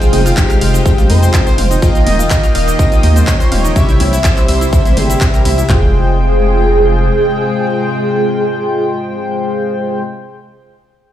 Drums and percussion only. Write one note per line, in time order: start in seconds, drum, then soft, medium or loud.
0.02 closed hi-hat soft
0.02 shaker soft
0.13 mid tom medium
0.13 open hi-hat loud
0.13 ride medium
0.13 high conga medium
0.26 open hi-hat medium
0.26 shaker medium
0.37 kick loud
0.37 clap loud
0.37 closed hi-hat medium
0.37 ride medium
0.37 shaker medium
0.50 clap soft
0.50 closed hi-hat soft
0.50 shaker soft
0.61 open hi-hat loud
0.61 ride medium
0.74 closed hi-hat soft
0.74 shaker medium
0.86 kick loud
0.86 closed hi-hat medium
0.86 ride medium
0.86 shaker medium
0.98 closed hi-hat soft
0.98 mid tom medium
0.98 shaker soft
1.10 open hi-hat loud
1.10 ride medium
1.10 high conga medium
1.23 closed hi-hat soft
1.23 shaker medium
1.34 kick loud
1.34 clap loud
1.34 closed hi-hat medium
1.34 ride medium
1.34 shaker medium
1.47 closed hi-hat soft
1.47 shaker soft
1.58 mid tom medium
1.58 open hi-hat loud
1.58 ride medium
1.71 closed hi-hat soft
1.71 shaker medium
1.82 kick loud
1.82 closed hi-hat medium
1.82 ride medium
1.82 shaker medium
1.95 closed hi-hat soft
1.95 shaker soft
2.07 mid tom medium
2.07 open hi-hat loud
2.07 ride medium
2.07 high conga medium
2.19 closed hi-hat soft
2.19 shaker medium
2.30 kick loud
2.30 clap loud
2.30 closed hi-hat medium
2.30 ride medium
2.30 shaker medium
2.43 closed hi-hat soft
2.43 shaker soft
2.55 open hi-hat loud
2.55 ride medium
2.68 closed hi-hat soft
2.68 shaker medium
2.79 kick loud
2.79 closed hi-hat medium
2.79 ride medium
2.79 shaker medium
2.92 closed hi-hat soft
2.92 shaker soft
3.03 open hi-hat medium
3.03 ride medium
3.03 high conga medium
3.16 closed hi-hat soft
3.16 mid tom medium
3.16 shaker medium
3.27 kick loud
3.27 clap loud
3.27 closed hi-hat medium
3.27 ride medium
3.27 shaker medium
3.40 closed hi-hat soft
3.40 shaker soft
3.52 mid tom medium
3.52 open hi-hat loud
3.52 ride medium
3.64 closed hi-hat soft
3.64 shaker medium
3.76 kick loud
3.76 closed hi-hat medium
3.76 ride medium
3.76 shaker medium
3.89 closed hi-hat soft
3.89 shaker soft
4.00 mid tom medium
4.00 open hi-hat loud
4.00 ride medium
4.00 high conga medium
4.13 open hi-hat medium
4.13 shaker medium
4.24 kick loud
4.24 clap loud
4.24 closed hi-hat medium
4.24 ride medium
4.24 shaker medium
4.37 clap soft
4.37 closed hi-hat soft
4.37 shaker soft
4.48 open hi-hat loud
4.48 ride medium
4.61 closed hi-hat soft
4.61 shaker medium
4.73 kick loud
4.73 closed hi-hat medium
4.73 ride medium
4.73 shaker medium
4.85 mid tom medium
4.85 open hi-hat medium
4.85 shaker soft
4.97 open hi-hat loud
4.97 ride medium
4.97 high conga loud
5.10 closed hi-hat soft
5.10 shaker medium
5.21 kick loud
5.21 clap loud
5.21 closed hi-hat medium
5.21 ride medium
5.21 shaker medium
5.34 closed hi-hat soft
5.34 shaker soft
5.45 mid tom medium
5.45 open hi-hat loud
5.45 ride medium
5.58 closed hi-hat soft
5.58 shaker medium
5.70 kick loud
5.70 clap medium
5.70 floor tom loud